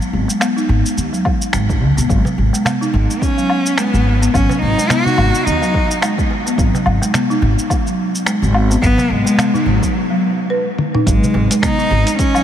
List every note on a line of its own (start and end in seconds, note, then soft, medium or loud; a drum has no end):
0.00 0.27 F#3 medium
0.00 shaker soft
0.13 0.24 G#1 medium
0.28 0.40 G#3 medium
0.28 shaker medium
0.41 0.55 B3 medium
0.41 finger snap medium
0.41 low woodblock medium
0.41 shaker medium
0.56 0.68 D#4 medium
0.56 shaker soft
0.69 0.80 G#1 loud
0.86 shaker medium
0.97 1.08 D#2 medium
0.97 shaker medium
1.13 1.52 F#3 medium
1.13 shaker soft
1.25 kick loud
1.25 low woodblock medium
1.42 shaker medium
1.53 1.82 G#1 medium
1.53 1.96 G#3 medium
1.53 finger snap loud
1.53 shaker medium
1.69 kick loud
1.69 shaker soft
1.82 1.93 C#2 medium
1.97 2.06 B1 medium
1.97 2.09 B3 medium
1.97 shaker medium
2.09 2.20 G#1 medium
2.09 2.52 F#3 medium
2.09 kick loud
2.09 shaker soft
2.25 darbuka tek medium
2.25 darbuka dum medium
2.25 shaker soft
2.38 2.48 G#1 medium
2.53 2.64 G#3 medium
2.53 darbuka ka medium
2.53 shaker medium
2.65 2.80 B3 medium
2.65 finger snap medium
2.65 darbuka dum medium
2.65 low woodblock medium
2.65 shaker soft
2.81 2.93 D#4 medium
2.81 shaker soft
2.94 3.04 G#1 loud
2.94 3.24 G#3 medium
3.10 shaker medium
3.22 3.79 C#4 medium
3.22 kick loud
3.22 shaker soft
3.38 3.77 F#3 medium
3.38 shaker soft
3.50 low woodblock medium
3.66 shaker medium
3.78 4.20 G#3 medium
3.78 4.22 B3 medium
3.78 finger snap medium
3.78 darbuka tek soft
3.78 shaker medium
3.94 4.28 G#1 medium
3.94 shaker soft
4.22 4.33 B3 medium
4.22 darbuka ka medium
4.22 shaker medium
4.34 4.45 G#1 loud
4.34 4.76 F#3 medium
4.34 4.60 C#4 loud
4.34 kick loud
4.34 low woodblock medium
4.34 shaker soft
4.49 darbuka tek medium
4.49 darbuka dum medium
4.49 shaker soft
4.62 4.73 G#1 medium
4.62 4.91 D#4 loud
4.78 4.89 G#3 medium
4.78 darbuka ka medium
4.78 shaker medium
4.90 5.04 B3 medium
4.90 5.47 F#4 loud
4.90 finger snap medium
4.90 darbuka dum medium
4.90 shaker soft
5.06 5.17 D#4 medium
5.06 darbuka dum medium
5.06 shaker soft
5.18 5.29 G#1 loud
5.18 low woodblock medium
5.35 shaker medium
5.46 5.57 D#2 medium
5.46 6.02 D#4 medium
5.46 shaker soft
5.62 6.01 F#3 medium
5.62 darbuka tek medium
5.62 shaker soft
5.74 kick medium
5.90 darbuka ka medium
5.90 shaker medium
6.02 6.44 G#3 medium
6.02 finger snap medium
6.02 low woodblock medium
6.02 shaker soft
6.18 kick medium
6.18 shaker soft
6.31 darbuka tek medium
6.46 6.57 B3 medium
6.46 darbuka ka medium
6.46 shaker medium
6.58 6.69 G#1 medium
6.58 7.00 F#3 medium
6.58 kick loud
6.58 shaker medium
6.74 darbuka tek medium
6.74 darbuka dum medium
6.74 shaker soft
6.86 6.97 G#1 medium
6.86 low woodblock medium
7.02 7.13 G#3 medium
7.02 darbuka ka medium
7.02 shaker medium
7.14 7.28 B3 medium
7.14 finger snap medium
7.14 darbuka dum medium
7.14 shaker medium
7.30 7.42 D#4 medium
7.30 shaker soft
7.42 7.53 G#1 loud
7.59 shaker medium
7.70 kick loud
7.70 low woodblock medium
7.70 shaker soft
7.86 8.25 F#3 medium
7.86 shaker soft
8.15 shaker medium
8.26 8.69 G#3 medium
8.26 finger snap medium
8.26 darbuka tek medium
8.26 shaker medium
8.42 8.76 G#1 loud
8.42 shaker soft
8.54 low woodblock medium
8.70 8.82 B3 medium
8.70 darbuka ka medium
8.70 shaker medium
8.82 8.93 G#1 loud
8.82 9.25 F#3 medium
8.82 9.13 B3 loud
8.82 kick loud
8.82 shaker soft
8.98 darbuka tek medium
8.98 darbuka dum medium
8.98 shaker soft
9.10 9.21 G#1 medium
9.10 9.69 G#3 loud
9.25 9.37 G#3 medium
9.25 darbuka ka medium
9.25 shaker medium
9.38 9.53 B3 medium
9.38 finger snap medium
9.38 darbuka dum medium
9.38 low woodblock medium
9.38 shaker soft
9.54 9.66 D#4 medium
9.54 darbuka dum medium
9.54 shaker soft
9.66 9.77 G#1 loud
9.66 9.95 F#3 medium
9.82 kick medium
9.82 shaker medium
10.10 10.21 F#3 medium
10.50 10.59 B4 medium
10.78 high tom medium
10.94 11.06 D#4 medium
10.94 mid tom medium
11.06 11.17 G#1 loud
11.06 11.49 F#3 medium
11.06 11.59 G#3 medium
11.06 kick loud
11.06 closed hi-hat soft
11.06 shaker medium
11.24 darbuka dum medium
11.24 shaker soft
11.34 11.45 G#1 medium
11.34 darbuka tek medium
11.50 11.61 G#3 medium
11.50 closed hi-hat medium
11.50 darbuka ka medium
11.50 shaker medium
11.62 11.77 B3 medium
11.62 12.15 D#4 loud
11.62 finger snap medium
11.62 kick loud
11.62 closed hi-hat soft
11.62 darbuka dum medium
11.62 shaker medium
11.78 11.90 D#4 medium
11.78 shaker soft
11.91 12.01 G#1 loud
12.07 closed hi-hat medium
12.07 shaker medium
12.19 12.43 C#4 loud
12.19 kick loud
12.19 closed hi-hat soft
12.19 shaker medium
12.34 12.43 F#3 medium
12.34 low woodblock medium
12.34 shaker soft